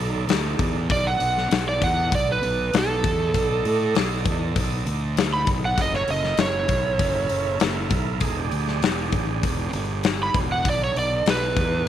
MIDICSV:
0, 0, Header, 1, 5, 480
1, 0, Start_track
1, 0, Tempo, 609756
1, 708, Time_signature, 4, 2, 24, 8
1, 9352, End_track
2, 0, Start_track
2, 0, Title_t, "Electric slide guitar"
2, 0, Program_c, 0, 29
2, 722, Note_on_c, 0, 74, 120
2, 832, Note_off_c, 0, 74, 0
2, 840, Note_on_c, 0, 78, 96
2, 1301, Note_off_c, 0, 78, 0
2, 1327, Note_on_c, 0, 74, 101
2, 1435, Note_off_c, 0, 74, 0
2, 1446, Note_on_c, 0, 78, 102
2, 1671, Note_off_c, 0, 78, 0
2, 1694, Note_on_c, 0, 74, 95
2, 1798, Note_off_c, 0, 74, 0
2, 1825, Note_on_c, 0, 71, 71
2, 2157, Note_off_c, 0, 71, 0
2, 2194, Note_on_c, 0, 69, 103
2, 3104, Note_off_c, 0, 69, 0
2, 4201, Note_on_c, 0, 83, 90
2, 4312, Note_off_c, 0, 83, 0
2, 4449, Note_on_c, 0, 78, 99
2, 4557, Note_off_c, 0, 78, 0
2, 4579, Note_on_c, 0, 75, 98
2, 4682, Note_off_c, 0, 75, 0
2, 4690, Note_on_c, 0, 73, 90
2, 4797, Note_off_c, 0, 73, 0
2, 4806, Note_on_c, 0, 75, 93
2, 5032, Note_off_c, 0, 75, 0
2, 5041, Note_on_c, 0, 73, 108
2, 5968, Note_off_c, 0, 73, 0
2, 8052, Note_on_c, 0, 83, 92
2, 8158, Note_off_c, 0, 83, 0
2, 8281, Note_on_c, 0, 78, 94
2, 8392, Note_off_c, 0, 78, 0
2, 8418, Note_on_c, 0, 74, 102
2, 8521, Note_off_c, 0, 74, 0
2, 8533, Note_on_c, 0, 73, 91
2, 8638, Note_off_c, 0, 73, 0
2, 8650, Note_on_c, 0, 74, 80
2, 8873, Note_off_c, 0, 74, 0
2, 8895, Note_on_c, 0, 71, 103
2, 9352, Note_off_c, 0, 71, 0
2, 9352, End_track
3, 0, Start_track
3, 0, Title_t, "Tonewheel organ"
3, 0, Program_c, 1, 16
3, 0, Note_on_c, 1, 63, 76
3, 0, Note_on_c, 1, 69, 68
3, 0, Note_on_c, 1, 74, 75
3, 692, Note_off_c, 1, 63, 0
3, 694, Note_off_c, 1, 74, 0
3, 695, Note_off_c, 1, 69, 0
3, 714, Note_on_c, 1, 70, 61
3, 718, Note_on_c, 1, 76, 65
3, 719, Note_on_c, 1, 75, 68
3, 856, Note_on_c, 1, 69, 74
3, 857, Note_off_c, 1, 75, 0
3, 859, Note_on_c, 1, 74, 78
3, 866, Note_on_c, 1, 75, 71
3, 871, Note_off_c, 1, 70, 0
3, 873, Note_off_c, 1, 76, 0
3, 2606, Note_off_c, 1, 69, 0
3, 2608, Note_off_c, 1, 74, 0
3, 2611, Note_off_c, 1, 75, 0
3, 2634, Note_on_c, 1, 69, 67
3, 2635, Note_on_c, 1, 75, 67
3, 2638, Note_on_c, 1, 74, 74
3, 4534, Note_off_c, 1, 69, 0
3, 4534, Note_off_c, 1, 75, 0
3, 4536, Note_off_c, 1, 74, 0
3, 4545, Note_on_c, 1, 70, 67
3, 4547, Note_on_c, 1, 69, 71
3, 4553, Note_on_c, 1, 64, 70
3, 6442, Note_off_c, 1, 69, 0
3, 6449, Note_off_c, 1, 70, 0
3, 6449, Note_on_c, 1, 68, 67
3, 6451, Note_on_c, 1, 69, 62
3, 6453, Note_off_c, 1, 64, 0
3, 6458, Note_on_c, 1, 63, 70
3, 6585, Note_off_c, 1, 68, 0
3, 6595, Note_on_c, 1, 67, 71
3, 6595, Note_on_c, 1, 68, 72
3, 6599, Note_on_c, 1, 62, 70
3, 6621, Note_off_c, 1, 69, 0
3, 6624, Note_off_c, 1, 63, 0
3, 8354, Note_off_c, 1, 68, 0
3, 8355, Note_off_c, 1, 67, 0
3, 8356, Note_off_c, 1, 62, 0
3, 8392, Note_on_c, 1, 69, 73
3, 8397, Note_on_c, 1, 63, 65
3, 8400, Note_on_c, 1, 62, 71
3, 9352, Note_off_c, 1, 62, 0
3, 9352, Note_off_c, 1, 63, 0
3, 9352, Note_off_c, 1, 69, 0
3, 9352, End_track
4, 0, Start_track
4, 0, Title_t, "Fingered electric bass"
4, 0, Program_c, 2, 33
4, 0, Note_on_c, 2, 35, 99
4, 191, Note_off_c, 2, 35, 0
4, 216, Note_on_c, 2, 38, 93
4, 445, Note_off_c, 2, 38, 0
4, 464, Note_on_c, 2, 40, 103
4, 689, Note_off_c, 2, 40, 0
4, 703, Note_on_c, 2, 35, 87
4, 929, Note_off_c, 2, 35, 0
4, 951, Note_on_c, 2, 35, 91
4, 1173, Note_off_c, 2, 35, 0
4, 1189, Note_on_c, 2, 35, 82
4, 1413, Note_off_c, 2, 35, 0
4, 1425, Note_on_c, 2, 40, 101
4, 1650, Note_off_c, 2, 40, 0
4, 1672, Note_on_c, 2, 35, 103
4, 1894, Note_off_c, 2, 35, 0
4, 1921, Note_on_c, 2, 35, 81
4, 2139, Note_off_c, 2, 35, 0
4, 2154, Note_on_c, 2, 35, 84
4, 2376, Note_off_c, 2, 35, 0
4, 2389, Note_on_c, 2, 40, 101
4, 2613, Note_off_c, 2, 40, 0
4, 2634, Note_on_c, 2, 35, 84
4, 2856, Note_off_c, 2, 35, 0
4, 2876, Note_on_c, 2, 45, 101
4, 3096, Note_off_c, 2, 45, 0
4, 3110, Note_on_c, 2, 35, 83
4, 3333, Note_off_c, 2, 35, 0
4, 3347, Note_on_c, 2, 40, 95
4, 3572, Note_off_c, 2, 40, 0
4, 3592, Note_on_c, 2, 35, 80
4, 3815, Note_off_c, 2, 35, 0
4, 3829, Note_on_c, 2, 38, 91
4, 4279, Note_off_c, 2, 38, 0
4, 4305, Note_on_c, 2, 35, 98
4, 4531, Note_off_c, 2, 35, 0
4, 4549, Note_on_c, 2, 30, 93
4, 4773, Note_off_c, 2, 30, 0
4, 4787, Note_on_c, 2, 30, 83
4, 5012, Note_off_c, 2, 30, 0
4, 5023, Note_on_c, 2, 30, 90
4, 5250, Note_off_c, 2, 30, 0
4, 5265, Note_on_c, 2, 35, 92
4, 5491, Note_off_c, 2, 35, 0
4, 5504, Note_on_c, 2, 30, 95
4, 5731, Note_off_c, 2, 30, 0
4, 5748, Note_on_c, 2, 30, 75
4, 5973, Note_off_c, 2, 30, 0
4, 5991, Note_on_c, 2, 30, 86
4, 6214, Note_off_c, 2, 30, 0
4, 6226, Note_on_c, 2, 35, 102
4, 6451, Note_off_c, 2, 35, 0
4, 6462, Note_on_c, 2, 28, 82
4, 6689, Note_off_c, 2, 28, 0
4, 6702, Note_on_c, 2, 38, 101
4, 6929, Note_off_c, 2, 38, 0
4, 6940, Note_on_c, 2, 28, 88
4, 7168, Note_off_c, 2, 28, 0
4, 7185, Note_on_c, 2, 33, 88
4, 7411, Note_off_c, 2, 33, 0
4, 7423, Note_on_c, 2, 28, 85
4, 7649, Note_off_c, 2, 28, 0
4, 7658, Note_on_c, 2, 31, 91
4, 8112, Note_off_c, 2, 31, 0
4, 8141, Note_on_c, 2, 28, 99
4, 8368, Note_off_c, 2, 28, 0
4, 8380, Note_on_c, 2, 35, 95
4, 8608, Note_off_c, 2, 35, 0
4, 8626, Note_on_c, 2, 35, 82
4, 8851, Note_off_c, 2, 35, 0
4, 8862, Note_on_c, 2, 35, 89
4, 9089, Note_off_c, 2, 35, 0
4, 9106, Note_on_c, 2, 40, 99
4, 9331, Note_off_c, 2, 40, 0
4, 9352, End_track
5, 0, Start_track
5, 0, Title_t, "Drums"
5, 227, Note_on_c, 9, 46, 79
5, 237, Note_on_c, 9, 38, 114
5, 305, Note_off_c, 9, 46, 0
5, 316, Note_off_c, 9, 38, 0
5, 466, Note_on_c, 9, 36, 98
5, 467, Note_on_c, 9, 46, 62
5, 545, Note_off_c, 9, 36, 0
5, 546, Note_off_c, 9, 46, 0
5, 707, Note_on_c, 9, 36, 98
5, 711, Note_on_c, 9, 46, 75
5, 786, Note_off_c, 9, 36, 0
5, 790, Note_off_c, 9, 46, 0
5, 946, Note_on_c, 9, 46, 60
5, 1025, Note_off_c, 9, 46, 0
5, 1084, Note_on_c, 9, 38, 32
5, 1163, Note_off_c, 9, 38, 0
5, 1190, Note_on_c, 9, 46, 90
5, 1201, Note_on_c, 9, 38, 118
5, 1269, Note_off_c, 9, 46, 0
5, 1279, Note_off_c, 9, 38, 0
5, 1431, Note_on_c, 9, 36, 101
5, 1434, Note_on_c, 9, 46, 58
5, 1509, Note_off_c, 9, 36, 0
5, 1513, Note_off_c, 9, 46, 0
5, 1669, Note_on_c, 9, 36, 102
5, 1673, Note_on_c, 9, 46, 77
5, 1748, Note_off_c, 9, 36, 0
5, 1752, Note_off_c, 9, 46, 0
5, 1912, Note_on_c, 9, 46, 60
5, 1990, Note_off_c, 9, 46, 0
5, 2153, Note_on_c, 9, 46, 84
5, 2163, Note_on_c, 9, 38, 118
5, 2232, Note_off_c, 9, 46, 0
5, 2242, Note_off_c, 9, 38, 0
5, 2393, Note_on_c, 9, 36, 107
5, 2400, Note_on_c, 9, 46, 55
5, 2472, Note_off_c, 9, 36, 0
5, 2479, Note_off_c, 9, 46, 0
5, 2632, Note_on_c, 9, 36, 81
5, 2639, Note_on_c, 9, 46, 69
5, 2711, Note_off_c, 9, 36, 0
5, 2718, Note_off_c, 9, 46, 0
5, 2875, Note_on_c, 9, 46, 59
5, 2954, Note_off_c, 9, 46, 0
5, 3111, Note_on_c, 9, 46, 74
5, 3121, Note_on_c, 9, 38, 111
5, 3190, Note_off_c, 9, 46, 0
5, 3200, Note_off_c, 9, 38, 0
5, 3350, Note_on_c, 9, 36, 103
5, 3351, Note_on_c, 9, 46, 56
5, 3429, Note_off_c, 9, 36, 0
5, 3430, Note_off_c, 9, 46, 0
5, 3589, Note_on_c, 9, 46, 77
5, 3590, Note_on_c, 9, 36, 96
5, 3667, Note_off_c, 9, 46, 0
5, 3669, Note_off_c, 9, 36, 0
5, 3832, Note_on_c, 9, 46, 61
5, 3910, Note_off_c, 9, 46, 0
5, 4071, Note_on_c, 9, 46, 87
5, 4082, Note_on_c, 9, 38, 117
5, 4150, Note_off_c, 9, 46, 0
5, 4160, Note_off_c, 9, 38, 0
5, 4304, Note_on_c, 9, 46, 57
5, 4308, Note_on_c, 9, 36, 107
5, 4383, Note_off_c, 9, 46, 0
5, 4387, Note_off_c, 9, 36, 0
5, 4547, Note_on_c, 9, 46, 78
5, 4548, Note_on_c, 9, 36, 97
5, 4626, Note_off_c, 9, 46, 0
5, 4627, Note_off_c, 9, 36, 0
5, 4673, Note_on_c, 9, 38, 32
5, 4752, Note_off_c, 9, 38, 0
5, 4785, Note_on_c, 9, 46, 61
5, 4863, Note_off_c, 9, 46, 0
5, 4911, Note_on_c, 9, 38, 34
5, 4990, Note_off_c, 9, 38, 0
5, 5018, Note_on_c, 9, 46, 80
5, 5028, Note_on_c, 9, 38, 122
5, 5096, Note_off_c, 9, 46, 0
5, 5107, Note_off_c, 9, 38, 0
5, 5262, Note_on_c, 9, 46, 64
5, 5266, Note_on_c, 9, 36, 96
5, 5341, Note_off_c, 9, 46, 0
5, 5345, Note_off_c, 9, 36, 0
5, 5505, Note_on_c, 9, 36, 104
5, 5505, Note_on_c, 9, 46, 84
5, 5584, Note_off_c, 9, 36, 0
5, 5584, Note_off_c, 9, 46, 0
5, 5741, Note_on_c, 9, 46, 65
5, 5820, Note_off_c, 9, 46, 0
5, 5982, Note_on_c, 9, 46, 84
5, 5992, Note_on_c, 9, 38, 122
5, 6061, Note_off_c, 9, 46, 0
5, 6071, Note_off_c, 9, 38, 0
5, 6222, Note_on_c, 9, 46, 57
5, 6224, Note_on_c, 9, 36, 100
5, 6300, Note_off_c, 9, 46, 0
5, 6303, Note_off_c, 9, 36, 0
5, 6458, Note_on_c, 9, 46, 78
5, 6463, Note_on_c, 9, 36, 81
5, 6537, Note_off_c, 9, 46, 0
5, 6542, Note_off_c, 9, 36, 0
5, 6702, Note_on_c, 9, 46, 52
5, 6781, Note_off_c, 9, 46, 0
5, 6830, Note_on_c, 9, 38, 32
5, 6909, Note_off_c, 9, 38, 0
5, 6947, Note_on_c, 9, 46, 75
5, 6958, Note_on_c, 9, 38, 113
5, 7026, Note_off_c, 9, 46, 0
5, 7036, Note_off_c, 9, 38, 0
5, 7181, Note_on_c, 9, 46, 51
5, 7184, Note_on_c, 9, 36, 94
5, 7260, Note_off_c, 9, 46, 0
5, 7263, Note_off_c, 9, 36, 0
5, 7426, Note_on_c, 9, 36, 92
5, 7429, Note_on_c, 9, 46, 77
5, 7504, Note_off_c, 9, 36, 0
5, 7508, Note_off_c, 9, 46, 0
5, 7661, Note_on_c, 9, 46, 63
5, 7740, Note_off_c, 9, 46, 0
5, 7900, Note_on_c, 9, 46, 78
5, 7910, Note_on_c, 9, 38, 117
5, 7979, Note_off_c, 9, 46, 0
5, 7989, Note_off_c, 9, 38, 0
5, 8143, Note_on_c, 9, 36, 102
5, 8148, Note_on_c, 9, 46, 51
5, 8222, Note_off_c, 9, 36, 0
5, 8226, Note_off_c, 9, 46, 0
5, 8384, Note_on_c, 9, 36, 100
5, 8388, Note_on_c, 9, 46, 72
5, 8463, Note_off_c, 9, 36, 0
5, 8466, Note_off_c, 9, 46, 0
5, 8630, Note_on_c, 9, 46, 57
5, 8709, Note_off_c, 9, 46, 0
5, 8866, Note_on_c, 9, 46, 84
5, 8876, Note_on_c, 9, 38, 119
5, 8944, Note_off_c, 9, 46, 0
5, 8955, Note_off_c, 9, 38, 0
5, 9105, Note_on_c, 9, 36, 100
5, 9107, Note_on_c, 9, 46, 54
5, 9183, Note_off_c, 9, 36, 0
5, 9185, Note_off_c, 9, 46, 0
5, 9352, End_track
0, 0, End_of_file